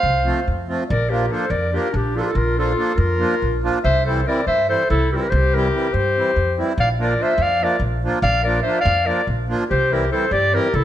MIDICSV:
0, 0, Header, 1, 5, 480
1, 0, Start_track
1, 0, Tempo, 421644
1, 1015, Time_signature, 7, 3, 24, 8
1, 6291, Tempo, 416667
1, 12414, End_track
2, 0, Start_track
2, 0, Title_t, "Clarinet"
2, 0, Program_c, 0, 71
2, 0, Note_on_c, 0, 77, 117
2, 794, Note_off_c, 0, 77, 0
2, 997, Note_on_c, 0, 74, 90
2, 1260, Note_on_c, 0, 70, 69
2, 1277, Note_off_c, 0, 74, 0
2, 1514, Note_on_c, 0, 72, 83
2, 1531, Note_off_c, 0, 70, 0
2, 1709, Note_on_c, 0, 74, 97
2, 1726, Note_off_c, 0, 72, 0
2, 1973, Note_off_c, 0, 74, 0
2, 2002, Note_on_c, 0, 70, 79
2, 2234, Note_on_c, 0, 67, 94
2, 2251, Note_off_c, 0, 70, 0
2, 2478, Note_on_c, 0, 69, 81
2, 2495, Note_off_c, 0, 67, 0
2, 2537, Note_on_c, 0, 67, 63
2, 2554, Note_off_c, 0, 69, 0
2, 2586, Note_on_c, 0, 69, 83
2, 2603, Note_off_c, 0, 67, 0
2, 2690, Note_on_c, 0, 70, 96
2, 2707, Note_off_c, 0, 69, 0
2, 2934, Note_off_c, 0, 70, 0
2, 2941, Note_on_c, 0, 69, 85
2, 3389, Note_on_c, 0, 70, 116
2, 3406, Note_off_c, 0, 69, 0
2, 4141, Note_off_c, 0, 70, 0
2, 4370, Note_on_c, 0, 76, 106
2, 4602, Note_off_c, 0, 76, 0
2, 4615, Note_on_c, 0, 72, 75
2, 4830, Note_off_c, 0, 72, 0
2, 4876, Note_on_c, 0, 74, 88
2, 5075, Note_off_c, 0, 74, 0
2, 5095, Note_on_c, 0, 76, 110
2, 5326, Note_off_c, 0, 76, 0
2, 5342, Note_on_c, 0, 72, 107
2, 5553, Note_off_c, 0, 72, 0
2, 5580, Note_on_c, 0, 69, 101
2, 5811, Note_off_c, 0, 69, 0
2, 5836, Note_on_c, 0, 70, 74
2, 5884, Note_on_c, 0, 69, 73
2, 5901, Note_off_c, 0, 70, 0
2, 5936, Note_on_c, 0, 70, 90
2, 5953, Note_off_c, 0, 69, 0
2, 6033, Note_on_c, 0, 72, 97
2, 6050, Note_off_c, 0, 70, 0
2, 6308, Note_on_c, 0, 70, 83
2, 6325, Note_off_c, 0, 72, 0
2, 6756, Note_on_c, 0, 72, 109
2, 6773, Note_off_c, 0, 70, 0
2, 7505, Note_off_c, 0, 72, 0
2, 7759, Note_on_c, 0, 77, 108
2, 7865, Note_off_c, 0, 77, 0
2, 8020, Note_on_c, 0, 74, 88
2, 8247, Note_on_c, 0, 76, 107
2, 8264, Note_off_c, 0, 74, 0
2, 8470, Note_on_c, 0, 77, 124
2, 8487, Note_off_c, 0, 76, 0
2, 8721, Note_on_c, 0, 74, 97
2, 8738, Note_off_c, 0, 77, 0
2, 8941, Note_off_c, 0, 74, 0
2, 9407, Note_on_c, 0, 77, 115
2, 9642, Note_off_c, 0, 77, 0
2, 9650, Note_on_c, 0, 74, 91
2, 9846, Note_off_c, 0, 74, 0
2, 9853, Note_on_c, 0, 76, 82
2, 10062, Note_off_c, 0, 76, 0
2, 10069, Note_on_c, 0, 77, 115
2, 10368, Note_on_c, 0, 74, 98
2, 10385, Note_off_c, 0, 77, 0
2, 10604, Note_off_c, 0, 74, 0
2, 11106, Note_on_c, 0, 72, 95
2, 11360, Note_on_c, 0, 70, 87
2, 11377, Note_off_c, 0, 72, 0
2, 11571, Note_off_c, 0, 70, 0
2, 11578, Note_on_c, 0, 72, 97
2, 11813, Note_on_c, 0, 74, 118
2, 11830, Note_off_c, 0, 72, 0
2, 12069, Note_on_c, 0, 70, 105
2, 12087, Note_off_c, 0, 74, 0
2, 12302, Note_on_c, 0, 69, 98
2, 12319, Note_off_c, 0, 70, 0
2, 12414, Note_off_c, 0, 69, 0
2, 12414, End_track
3, 0, Start_track
3, 0, Title_t, "Clarinet"
3, 0, Program_c, 1, 71
3, 0, Note_on_c, 1, 72, 92
3, 795, Note_off_c, 1, 72, 0
3, 1026, Note_on_c, 1, 70, 88
3, 1248, Note_on_c, 1, 67, 73
3, 1265, Note_off_c, 1, 70, 0
3, 1504, Note_on_c, 1, 69, 74
3, 1521, Note_off_c, 1, 67, 0
3, 1714, Note_on_c, 1, 70, 83
3, 1731, Note_off_c, 1, 69, 0
3, 1960, Note_off_c, 1, 70, 0
3, 1967, Note_on_c, 1, 67, 67
3, 2192, Note_on_c, 1, 62, 62
3, 2209, Note_off_c, 1, 67, 0
3, 2457, Note_on_c, 1, 65, 66
3, 2474, Note_off_c, 1, 62, 0
3, 2509, Note_on_c, 1, 64, 59
3, 2526, Note_off_c, 1, 65, 0
3, 2574, Note_on_c, 1, 65, 63
3, 2591, Note_off_c, 1, 64, 0
3, 2674, Note_off_c, 1, 65, 0
3, 2674, Note_on_c, 1, 65, 79
3, 2933, Note_off_c, 1, 65, 0
3, 2963, Note_on_c, 1, 65, 83
3, 3406, Note_off_c, 1, 65, 0
3, 3406, Note_on_c, 1, 65, 82
3, 4150, Note_off_c, 1, 65, 0
3, 4381, Note_on_c, 1, 72, 111
3, 4608, Note_off_c, 1, 72, 0
3, 4619, Note_on_c, 1, 69, 82
3, 4832, Note_off_c, 1, 69, 0
3, 4855, Note_on_c, 1, 70, 88
3, 5064, Note_off_c, 1, 70, 0
3, 5093, Note_on_c, 1, 72, 90
3, 5325, Note_off_c, 1, 72, 0
3, 5339, Note_on_c, 1, 69, 70
3, 5551, Note_off_c, 1, 69, 0
3, 5577, Note_on_c, 1, 64, 92
3, 5810, Note_off_c, 1, 64, 0
3, 5832, Note_on_c, 1, 67, 69
3, 5876, Note_on_c, 1, 65, 59
3, 5893, Note_off_c, 1, 67, 0
3, 5948, Note_on_c, 1, 67, 73
3, 5966, Note_off_c, 1, 65, 0
3, 6083, Note_off_c, 1, 67, 0
3, 6083, Note_on_c, 1, 67, 103
3, 6335, Note_off_c, 1, 67, 0
3, 6335, Note_on_c, 1, 67, 89
3, 6799, Note_off_c, 1, 67, 0
3, 6799, Note_on_c, 1, 67, 89
3, 7527, Note_off_c, 1, 67, 0
3, 7756, Note_on_c, 1, 74, 94
3, 7863, Note_off_c, 1, 74, 0
3, 8002, Note_on_c, 1, 70, 85
3, 8248, Note_on_c, 1, 72, 81
3, 8265, Note_off_c, 1, 70, 0
3, 8478, Note_on_c, 1, 74, 92
3, 8495, Note_off_c, 1, 72, 0
3, 8722, Note_on_c, 1, 70, 69
3, 8740, Note_off_c, 1, 74, 0
3, 8942, Note_off_c, 1, 70, 0
3, 9403, Note_on_c, 1, 74, 97
3, 9633, Note_off_c, 1, 74, 0
3, 9640, Note_on_c, 1, 70, 85
3, 9858, Note_off_c, 1, 70, 0
3, 9865, Note_on_c, 1, 72, 84
3, 10066, Note_off_c, 1, 72, 0
3, 10073, Note_on_c, 1, 74, 91
3, 10359, Note_on_c, 1, 70, 74
3, 10377, Note_off_c, 1, 74, 0
3, 10600, Note_off_c, 1, 70, 0
3, 11099, Note_on_c, 1, 67, 92
3, 11361, Note_off_c, 1, 67, 0
3, 11361, Note_on_c, 1, 67, 84
3, 11574, Note_off_c, 1, 67, 0
3, 11581, Note_on_c, 1, 69, 83
3, 11820, Note_on_c, 1, 67, 84
3, 11837, Note_off_c, 1, 69, 0
3, 12077, Note_off_c, 1, 67, 0
3, 12077, Note_on_c, 1, 67, 82
3, 12318, Note_on_c, 1, 64, 80
3, 12335, Note_off_c, 1, 67, 0
3, 12414, Note_off_c, 1, 64, 0
3, 12414, End_track
4, 0, Start_track
4, 0, Title_t, "Accordion"
4, 0, Program_c, 2, 21
4, 273, Note_on_c, 2, 53, 63
4, 280, Note_on_c, 2, 57, 64
4, 280, Note_on_c, 2, 60, 79
4, 293, Note_on_c, 2, 65, 78
4, 451, Note_off_c, 2, 53, 0
4, 454, Note_off_c, 2, 57, 0
4, 454, Note_off_c, 2, 60, 0
4, 461, Note_off_c, 2, 65, 0
4, 767, Note_on_c, 2, 53, 73
4, 782, Note_on_c, 2, 57, 63
4, 783, Note_on_c, 2, 60, 63
4, 787, Note_on_c, 2, 65, 73
4, 944, Note_off_c, 2, 53, 0
4, 951, Note_off_c, 2, 57, 0
4, 952, Note_off_c, 2, 60, 0
4, 954, Note_off_c, 2, 65, 0
4, 1243, Note_on_c, 2, 53, 55
4, 1255, Note_on_c, 2, 58, 54
4, 1261, Note_on_c, 2, 62, 51
4, 1274, Note_on_c, 2, 65, 72
4, 1418, Note_off_c, 2, 53, 0
4, 1424, Note_off_c, 2, 58, 0
4, 1427, Note_off_c, 2, 62, 0
4, 1434, Note_off_c, 2, 65, 0
4, 1476, Note_on_c, 2, 53, 62
4, 1483, Note_on_c, 2, 58, 56
4, 1491, Note_on_c, 2, 62, 53
4, 1497, Note_on_c, 2, 65, 70
4, 1649, Note_off_c, 2, 53, 0
4, 1652, Note_off_c, 2, 58, 0
4, 1656, Note_off_c, 2, 62, 0
4, 1659, Note_off_c, 2, 65, 0
4, 1967, Note_on_c, 2, 53, 71
4, 1969, Note_on_c, 2, 58, 58
4, 1971, Note_on_c, 2, 62, 60
4, 1981, Note_on_c, 2, 65, 67
4, 2141, Note_off_c, 2, 53, 0
4, 2141, Note_off_c, 2, 58, 0
4, 2143, Note_off_c, 2, 62, 0
4, 2148, Note_off_c, 2, 65, 0
4, 2433, Note_on_c, 2, 53, 65
4, 2449, Note_on_c, 2, 58, 58
4, 2454, Note_on_c, 2, 62, 60
4, 2458, Note_on_c, 2, 65, 67
4, 2619, Note_off_c, 2, 53, 0
4, 2626, Note_off_c, 2, 58, 0
4, 2629, Note_off_c, 2, 62, 0
4, 2631, Note_off_c, 2, 65, 0
4, 2920, Note_on_c, 2, 53, 67
4, 2924, Note_on_c, 2, 58, 52
4, 2933, Note_on_c, 2, 62, 55
4, 2934, Note_on_c, 2, 65, 69
4, 3098, Note_off_c, 2, 53, 0
4, 3100, Note_off_c, 2, 58, 0
4, 3104, Note_off_c, 2, 62, 0
4, 3105, Note_off_c, 2, 65, 0
4, 3145, Note_on_c, 2, 58, 62
4, 3146, Note_on_c, 2, 53, 71
4, 3162, Note_on_c, 2, 62, 59
4, 3169, Note_on_c, 2, 65, 75
4, 3324, Note_off_c, 2, 53, 0
4, 3324, Note_off_c, 2, 58, 0
4, 3332, Note_off_c, 2, 62, 0
4, 3336, Note_off_c, 2, 65, 0
4, 3620, Note_on_c, 2, 53, 69
4, 3632, Note_on_c, 2, 58, 64
4, 3632, Note_on_c, 2, 62, 58
4, 3643, Note_on_c, 2, 65, 80
4, 3807, Note_off_c, 2, 53, 0
4, 3813, Note_off_c, 2, 58, 0
4, 3813, Note_off_c, 2, 62, 0
4, 3818, Note_off_c, 2, 65, 0
4, 4122, Note_on_c, 2, 53, 79
4, 4136, Note_on_c, 2, 58, 65
4, 4141, Note_on_c, 2, 62, 75
4, 4147, Note_on_c, 2, 65, 89
4, 4302, Note_off_c, 2, 53, 0
4, 4309, Note_off_c, 2, 58, 0
4, 4312, Note_off_c, 2, 62, 0
4, 4315, Note_off_c, 2, 65, 0
4, 4624, Note_on_c, 2, 52, 73
4, 4625, Note_on_c, 2, 55, 55
4, 4635, Note_on_c, 2, 60, 58
4, 4636, Note_on_c, 2, 64, 82
4, 4788, Note_off_c, 2, 52, 0
4, 4788, Note_off_c, 2, 55, 0
4, 4794, Note_off_c, 2, 60, 0
4, 4794, Note_off_c, 2, 64, 0
4, 4844, Note_on_c, 2, 52, 55
4, 4854, Note_on_c, 2, 55, 59
4, 4864, Note_on_c, 2, 60, 61
4, 4864, Note_on_c, 2, 64, 83
4, 5011, Note_off_c, 2, 52, 0
4, 5016, Note_off_c, 2, 55, 0
4, 5021, Note_off_c, 2, 60, 0
4, 5021, Note_off_c, 2, 64, 0
4, 5326, Note_on_c, 2, 52, 64
4, 5332, Note_on_c, 2, 60, 62
4, 5333, Note_on_c, 2, 55, 62
4, 5344, Note_on_c, 2, 64, 74
4, 5497, Note_off_c, 2, 52, 0
4, 5500, Note_off_c, 2, 60, 0
4, 5501, Note_off_c, 2, 55, 0
4, 5506, Note_off_c, 2, 64, 0
4, 5838, Note_on_c, 2, 52, 58
4, 5841, Note_on_c, 2, 55, 55
4, 5847, Note_on_c, 2, 60, 59
4, 5853, Note_on_c, 2, 64, 68
4, 5997, Note_off_c, 2, 52, 0
4, 5998, Note_off_c, 2, 55, 0
4, 6001, Note_off_c, 2, 60, 0
4, 6004, Note_off_c, 2, 64, 0
4, 6296, Note_on_c, 2, 52, 62
4, 6309, Note_on_c, 2, 55, 61
4, 6310, Note_on_c, 2, 64, 73
4, 6315, Note_on_c, 2, 60, 66
4, 6462, Note_off_c, 2, 52, 0
4, 6468, Note_off_c, 2, 55, 0
4, 6469, Note_off_c, 2, 64, 0
4, 6472, Note_off_c, 2, 60, 0
4, 6519, Note_on_c, 2, 52, 65
4, 6531, Note_on_c, 2, 55, 51
4, 6534, Note_on_c, 2, 60, 61
4, 6543, Note_on_c, 2, 64, 68
4, 6688, Note_off_c, 2, 52, 0
4, 6694, Note_off_c, 2, 55, 0
4, 6695, Note_off_c, 2, 60, 0
4, 6700, Note_off_c, 2, 64, 0
4, 7021, Note_on_c, 2, 52, 68
4, 7031, Note_on_c, 2, 55, 56
4, 7033, Note_on_c, 2, 60, 63
4, 7050, Note_on_c, 2, 64, 64
4, 7185, Note_off_c, 2, 52, 0
4, 7190, Note_off_c, 2, 55, 0
4, 7192, Note_off_c, 2, 60, 0
4, 7200, Note_off_c, 2, 64, 0
4, 7490, Note_on_c, 2, 52, 65
4, 7498, Note_on_c, 2, 55, 70
4, 7500, Note_on_c, 2, 60, 59
4, 7518, Note_on_c, 2, 64, 78
4, 7666, Note_off_c, 2, 52, 0
4, 7669, Note_off_c, 2, 55, 0
4, 7670, Note_off_c, 2, 60, 0
4, 7679, Note_off_c, 2, 64, 0
4, 7967, Note_on_c, 2, 53, 65
4, 7979, Note_on_c, 2, 58, 50
4, 7980, Note_on_c, 2, 62, 66
4, 7992, Note_on_c, 2, 65, 80
4, 8141, Note_off_c, 2, 53, 0
4, 8147, Note_off_c, 2, 58, 0
4, 8147, Note_off_c, 2, 62, 0
4, 8153, Note_off_c, 2, 65, 0
4, 8200, Note_on_c, 2, 53, 65
4, 8202, Note_on_c, 2, 58, 56
4, 8215, Note_on_c, 2, 62, 60
4, 8219, Note_on_c, 2, 65, 68
4, 8371, Note_off_c, 2, 53, 0
4, 8372, Note_off_c, 2, 58, 0
4, 8379, Note_off_c, 2, 62, 0
4, 8381, Note_off_c, 2, 65, 0
4, 8694, Note_on_c, 2, 58, 52
4, 8700, Note_on_c, 2, 62, 64
4, 8701, Note_on_c, 2, 53, 71
4, 8712, Note_on_c, 2, 65, 69
4, 8864, Note_off_c, 2, 58, 0
4, 8867, Note_off_c, 2, 53, 0
4, 8867, Note_off_c, 2, 62, 0
4, 8873, Note_off_c, 2, 65, 0
4, 9179, Note_on_c, 2, 53, 72
4, 9192, Note_on_c, 2, 58, 68
4, 9195, Note_on_c, 2, 62, 70
4, 9200, Note_on_c, 2, 65, 81
4, 9351, Note_off_c, 2, 53, 0
4, 9358, Note_off_c, 2, 58, 0
4, 9359, Note_off_c, 2, 62, 0
4, 9362, Note_off_c, 2, 65, 0
4, 9652, Note_on_c, 2, 53, 70
4, 9664, Note_on_c, 2, 58, 63
4, 9667, Note_on_c, 2, 62, 58
4, 9675, Note_on_c, 2, 65, 65
4, 9824, Note_off_c, 2, 53, 0
4, 9830, Note_off_c, 2, 58, 0
4, 9831, Note_off_c, 2, 62, 0
4, 9835, Note_off_c, 2, 65, 0
4, 9883, Note_on_c, 2, 53, 54
4, 9889, Note_on_c, 2, 58, 59
4, 9891, Note_on_c, 2, 62, 61
4, 9894, Note_on_c, 2, 65, 73
4, 10053, Note_off_c, 2, 53, 0
4, 10056, Note_off_c, 2, 58, 0
4, 10057, Note_off_c, 2, 62, 0
4, 10058, Note_off_c, 2, 65, 0
4, 10356, Note_on_c, 2, 53, 59
4, 10360, Note_on_c, 2, 58, 58
4, 10370, Note_on_c, 2, 62, 66
4, 10377, Note_on_c, 2, 65, 70
4, 10534, Note_off_c, 2, 53, 0
4, 10536, Note_off_c, 2, 58, 0
4, 10541, Note_off_c, 2, 62, 0
4, 10545, Note_off_c, 2, 65, 0
4, 10845, Note_on_c, 2, 53, 84
4, 10856, Note_on_c, 2, 58, 67
4, 10856, Note_on_c, 2, 62, 66
4, 10869, Note_on_c, 2, 65, 79
4, 11023, Note_off_c, 2, 53, 0
4, 11028, Note_off_c, 2, 58, 0
4, 11028, Note_off_c, 2, 62, 0
4, 11035, Note_off_c, 2, 65, 0
4, 11325, Note_on_c, 2, 52, 74
4, 11325, Note_on_c, 2, 55, 60
4, 11337, Note_on_c, 2, 60, 57
4, 11342, Note_on_c, 2, 64, 64
4, 11498, Note_off_c, 2, 52, 0
4, 11498, Note_off_c, 2, 55, 0
4, 11504, Note_off_c, 2, 60, 0
4, 11506, Note_off_c, 2, 64, 0
4, 11569, Note_on_c, 2, 52, 59
4, 11576, Note_on_c, 2, 60, 60
4, 11577, Note_on_c, 2, 55, 50
4, 11582, Note_on_c, 2, 64, 73
4, 11733, Note_off_c, 2, 52, 0
4, 11736, Note_off_c, 2, 60, 0
4, 11737, Note_off_c, 2, 55, 0
4, 11740, Note_off_c, 2, 64, 0
4, 12046, Note_on_c, 2, 52, 65
4, 12055, Note_on_c, 2, 55, 70
4, 12055, Note_on_c, 2, 60, 66
4, 12076, Note_on_c, 2, 64, 78
4, 12216, Note_off_c, 2, 52, 0
4, 12220, Note_off_c, 2, 55, 0
4, 12220, Note_off_c, 2, 60, 0
4, 12231, Note_off_c, 2, 64, 0
4, 12414, End_track
5, 0, Start_track
5, 0, Title_t, "Upright bass"
5, 0, Program_c, 3, 32
5, 36, Note_on_c, 3, 36, 80
5, 330, Note_off_c, 3, 36, 0
5, 541, Note_on_c, 3, 41, 75
5, 831, Note_off_c, 3, 41, 0
5, 1028, Note_on_c, 3, 34, 95
5, 1446, Note_off_c, 3, 34, 0
5, 1708, Note_on_c, 3, 41, 83
5, 2006, Note_off_c, 3, 41, 0
5, 2206, Note_on_c, 3, 34, 86
5, 2501, Note_off_c, 3, 34, 0
5, 2676, Note_on_c, 3, 34, 88
5, 3104, Note_off_c, 3, 34, 0
5, 3388, Note_on_c, 3, 41, 88
5, 3685, Note_off_c, 3, 41, 0
5, 3896, Note_on_c, 3, 34, 74
5, 4187, Note_off_c, 3, 34, 0
5, 4376, Note_on_c, 3, 36, 91
5, 4796, Note_off_c, 3, 36, 0
5, 5086, Note_on_c, 3, 43, 72
5, 5376, Note_off_c, 3, 43, 0
5, 5579, Note_on_c, 3, 36, 84
5, 5867, Note_off_c, 3, 36, 0
5, 6056, Note_on_c, 3, 36, 100
5, 6475, Note_off_c, 3, 36, 0
5, 6765, Note_on_c, 3, 43, 87
5, 7057, Note_off_c, 3, 43, 0
5, 7254, Note_on_c, 3, 41, 75
5, 7546, Note_off_c, 3, 41, 0
5, 7731, Note_on_c, 3, 34, 92
5, 8154, Note_off_c, 3, 34, 0
5, 8423, Note_on_c, 3, 41, 91
5, 8722, Note_off_c, 3, 41, 0
5, 8905, Note_on_c, 3, 34, 81
5, 9206, Note_off_c, 3, 34, 0
5, 9397, Note_on_c, 3, 34, 99
5, 9824, Note_off_c, 3, 34, 0
5, 10124, Note_on_c, 3, 41, 97
5, 10416, Note_off_c, 3, 41, 0
5, 10607, Note_on_c, 3, 34, 76
5, 10900, Note_off_c, 3, 34, 0
5, 11108, Note_on_c, 3, 36, 80
5, 11524, Note_off_c, 3, 36, 0
5, 11803, Note_on_c, 3, 43, 80
5, 12093, Note_off_c, 3, 43, 0
5, 12293, Note_on_c, 3, 36, 90
5, 12414, Note_off_c, 3, 36, 0
5, 12414, End_track
0, 0, End_of_file